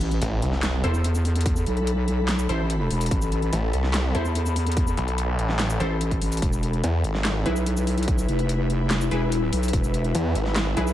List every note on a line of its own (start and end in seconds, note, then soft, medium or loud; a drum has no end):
0.00 0.20 A1 loud
0.00 6.42 A4 medium
0.00 closed hi-hat medium
0.00 sub drop medium
0.11 closed hi-hat soft
0.22 0.41 A1 loud
0.22 closed hi-hat medium
0.27 7.02 B5 medium
0.42 0.82 C2 medium
0.42 closed hi-hat medium
0.53 snare soft
0.63 snare loud
0.63 clap medium
0.63 closed hi-hat medium
0.84 1.65 E2 loud
0.84 0.94 E4 loud
0.84 0.94 A4 medium
0.84 0.94 C5 loud
0.84 closed hi-hat medium
0.94 shaker soft
1.04 closed hi-hat medium
1.15 shaker medium
1.25 open hi-hat medium
1.36 closed hi-hat medium
1.41 closed hi-hat medium
1.46 kick loud
1.46 closed hi-hat medium
1.56 shaker medium
1.66 2.47 B1 loud
1.66 closed hi-hat medium
1.77 closed hi-hat soft
1.87 closed hi-hat medium
2.08 closed hi-hat medium
2.29 snare loud
2.29 clap medium
2.29 closed hi-hat medium
2.39 shaker medium
2.49 2.89 A1 loud
2.49 2.60 E4 medium
2.49 2.60 A4 medium
2.49 2.60 C5 loud
2.49 closed hi-hat medium
2.70 closed hi-hat medium
2.91 3.10 E1 medium
2.91 open hi-hat medium
3.01 closed hi-hat medium
3.01 shaker medium
3.06 closed hi-hat medium
3.11 3.51 A1 loud
3.11 kick loud
3.11 closed hi-hat medium
3.22 shaker medium
3.32 closed hi-hat soft
3.42 closed hi-hat soft
3.53 3.72 A1 loud
3.53 closed hi-hat medium
3.73 4.13 C2 medium
3.73 closed hi-hat medium
3.84 snare soft
3.94 snare loud
3.94 clap medium
3.94 closed hi-hat medium
4.15 4.96 E2 loud
4.15 4.25 E4 medium
4.15 4.25 A4 medium
4.15 4.25 C5 loud
4.15 closed hi-hat soft
4.25 shaker medium
4.35 closed hi-hat medium
4.46 shaker medium
4.56 open hi-hat medium
4.67 closed hi-hat soft
4.72 closed hi-hat medium
4.77 kick loud
4.77 closed hi-hat medium
4.87 shaker medium
4.97 5.37 B1 loud
4.97 closed hi-hat medium
5.08 closed hi-hat soft
5.18 closed hi-hat medium
5.39 5.79 A1 loud
5.39 closed hi-hat soft
5.49 snare soft
5.59 snare loud
5.59 clap medium
5.59 closed hi-hat medium
5.70 shaker medium
5.80 6.20 A1 loud
5.80 5.91 E4 medium
5.80 5.91 A4 medium
5.80 5.91 C5 loud
5.80 closed hi-hat soft
6.01 closed hi-hat medium
6.11 kick medium
6.11 closed hi-hat soft
6.22 6.41 A1 loud
6.22 open hi-hat medium
6.32 closed hi-hat soft
6.32 shaker medium
6.37 closed hi-hat medium
6.42 6.82 E1 loud
6.42 10.93 E4 medium
6.42 kick loud
6.42 closed hi-hat medium
6.53 shaker medium
6.63 10.93 B4 medium
6.63 closed hi-hat medium
6.73 closed hi-hat soft
6.84 7.03 E2 medium
6.84 closed hi-hat medium
7.04 7.44 G#1 loud
7.04 closed hi-hat medium
7.15 snare soft
7.25 snare loud
7.25 clap medium
7.25 closed hi-hat medium
7.46 8.27 B1 loud
7.46 7.56 E4 medium
7.46 7.56 G#4 medium
7.46 7.56 B4 loud
7.46 closed hi-hat soft
7.56 shaker medium
7.66 closed hi-hat medium
7.77 shaker medium
7.87 open hi-hat medium
7.98 closed hi-hat soft
8.03 closed hi-hat medium
8.08 kick loud
8.08 closed hi-hat medium
8.18 shaker medium
8.28 9.10 F1 loud
8.28 closed hi-hat soft
8.39 closed hi-hat soft
8.49 closed hi-hat medium
8.70 closed hi-hat medium
8.91 snare loud
8.91 clap medium
8.91 closed hi-hat medium
9.01 shaker medium
9.11 9.51 E1 loud
9.11 9.22 E4 medium
9.11 9.22 G#4 medium
9.11 9.22 B4 loud
9.11 closed hi-hat medium
9.32 closed hi-hat medium
9.53 9.72 B1 loud
9.53 open hi-hat loud
9.63 closed hi-hat medium
9.63 shaker medium
9.68 closed hi-hat medium
9.73 10.13 E1 loud
9.73 kick loud
9.73 closed hi-hat medium
9.84 shaker medium
9.94 closed hi-hat medium
10.04 closed hi-hat soft
10.15 10.34 E2 loud
10.15 closed hi-hat medium
10.35 10.75 G#1 loud
10.35 closed hi-hat medium
10.46 snare soft
10.56 snare loud
10.56 clap medium
10.56 closed hi-hat medium
10.77 10.93 B1 loud
10.77 10.87 E4 loud
10.77 10.87 G#4 medium
10.77 10.87 B4 loud
10.77 closed hi-hat medium
10.87 shaker medium